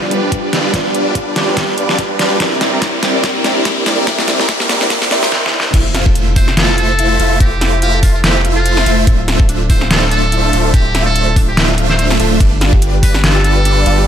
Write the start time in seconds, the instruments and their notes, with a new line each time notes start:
Already playing: string section F3 B3 D4 G4 D5, felt piano G3 D4 F4 B4, supersaw synth G3 D4 F4 B4 D5, harp D4 F4 G4 A4 B4, riser
0.10 felt piano G3 D4 F4 B4, harp G4, closed hi-hat
0.23 harp B4
0.32 kick, closed hi-hat
0.43 harp D4
0.53 supersaw synth G3 D4 F4 B4 D5, harp F4, snare, closed hi-hat
0.71 felt piano G3 D4 F4, supersaw synth G3 D4 F4 B4 D5, harp G4, kick, snare, closed hi-hat
0.76 felt piano D5
0.85 harp B4
0.95 closed hi-hat
1.06 harp D4
1.15 harp F4, kick, closed hi-hat
1.36 harp G4, snare, closed hi-hat
1.46 felt piano G3 D4 F4 B4, harp B4
1.57 kick, snare, closed hi-hat
1.69 harp D4
1.78 harp F4, closed hi-hat
1.89 snare
1.99 harp G4, kick, closed hi-hat
2.10 harp B4
2.19 supersaw synth G3 D4 F4 B4 D5, snare, closed hi-hat
2.31 harp D4
2.38 felt piano C3 A#3 E4, supersaw synth G3 C4 E4 A#4 D5, string section A#3 E4 C5, harp E4, kick, snare, closed hi-hat
2.42 felt piano D5
2.61 harp G4, snare, closed hi-hat
2.73 harp A#4
2.82 kick, snare, closed hi-hat
2.94 harp D4
3.03 harp E4, snare, closed hi-hat
3.13 felt piano C3 A#3 E4 D5
3.24 harp G4, kick, snare, closed hi-hat
3.35 harp A#4
3.43 felt piano C3 A#3 E4 D5, snare, closed hi-hat
3.56 harp D4
3.65 harp E4, kick, snare, closed hi-hat
3.86 supersaw synth G3 C4 E4 A#4 D5, harp G4, snare, closed hi-hat
3.98 harp A#4
4.05 felt piano C3 A#3 E4, supersaw synth G3 C4 E4 A#4 D5, kick, snare, closed hi-hat
4.09 felt piano E5
4.18 harp D4, snare
4.28 harp E4, snare, closed hi-hat
4.40 snare
4.49 harp G4, kick, snare, closed hi-hat
4.60 harp A#4, snare
4.69 snare, closed hi-hat
4.80 felt piano C3 A#3 E4 D5, harp D4, snare
4.90 harp E4, kick, snare, closed hi-hat
5.02 snare
5.10 felt piano C3 A#3 E4 D5, supersaw synth G3 C4 E4 A#4 C5, harp E5, snare, closed hi-hat
5.23 harp C5, snare
5.32 snare
5.46 snare
5.60 snare
5.74 sub bass F1, supersaw synth A3 E4 F4 C5 E5, harp E4, kick, closed hi-hat, crash, impact
5.95 harp F4, snare, closed hi-hat
6.06 harp A4, kick
6.15 closed hi-hat
6.27 harp C5
6.36 harp E4, muted trumpet C5, kick, open hi-hat
6.48 snare
6.57 harp F4, muted trumpet A4, snare, closed hi-hat
6.69 harp A4
6.78 muted trumpet A4, closed hi-hat
6.89 harp C5
6.99 harp E4, closed hi-hat
7.20 sub bass F1, supersaw synth A3 E4 F4 C5 E5, harp F4, closed hi-hat
7.31 harp A4
7.40 sub bass F1, supersaw synth A3 E4 F4 C5 E5, muted trumpet G4, kick, closed hi-hat
7.52 harp C5
7.61 harp E4, snare, closed hi-hat
7.82 harp F4, muted trumpet G4, closed hi-hat
7.94 harp A4
8.02 muted trumpet F4, kick, open hi-hat
8.14 muted trumpet F4, harp C5
8.23 harp E4, muted trumpet G4, snare, closed hi-hat
8.45 harp F4, closed hi-hat
8.56 muted trumpet F4, harp A4
8.66 closed hi-hat
8.77 harp C5, snare
8.86 sub bass F1, supersaw synth A3 E4 F4 C5 E5, harp E4, closed hi-hat
9.07 sub bass D1, supersaw synth A3 D4 F4 C5 E5, harp E4, kick, closed hi-hat
9.19 harp F4
9.28 snare, closed hi-hat
9.40 harp A4, kick
9.49 harp D4, closed hi-hat
9.69 harp E4, muted trumpet C5, kick, open hi-hat
9.81 harp F4, snare
9.90 muted trumpet A4, snare, closed hi-hat
10.02 harp A4
10.11 harp D4, muted trumpet A4, closed hi-hat
10.32 harp E4, closed hi-hat
10.44 harp F4
10.53 sub bass D1, supersaw synth A3 D4 F4 C5 E5, closed hi-hat
10.65 harp A4
10.74 sub bass D1, supersaw synth A3 D4 F4 C5 E5, harp D4, muted trumpet G4, kick, closed hi-hat
10.95 harp E4, snare, closed hi-hat
11.06 harp F4, muted trumpet A4
11.16 closed hi-hat
11.27 harp A4
11.36 harp D4, kick, open hi-hat
11.48 muted trumpet G4
11.57 harp E4, snare, closed hi-hat
11.69 harp F4
11.78 harp F4, closed hi-hat
11.89 muted trumpet C5, harp E5, snare
11.99 muted trumpet C5, closed hi-hat
12.10 harp F4, snare
12.19 sub bass D1, supersaw synth A3 D4 F4 C5 E5, harp A4, closed hi-hat
12.40 sub bass G1, supersaw synth G3 D4 F4 B4 D5, harp D4, kick, closed hi-hat, crash
12.61 harp F4, snare, closed hi-hat
12.73 harp G4, kick
12.82 closed hi-hat
12.94 harp B4
13.03 harp D4, muted trumpet B4, kick, open hi-hat
13.14 snare
13.23 harp F4, muted trumpet A4, snare, closed hi-hat
13.35 harp G4
13.44 muted trumpet A4, closed hi-hat
13.56 harp B4
13.65 harp D4, closed hi-hat
13.86 sub bass G1, supersaw synth G3 D4 F4 B4 D5, harp F4, closed hi-hat
13.98 harp G4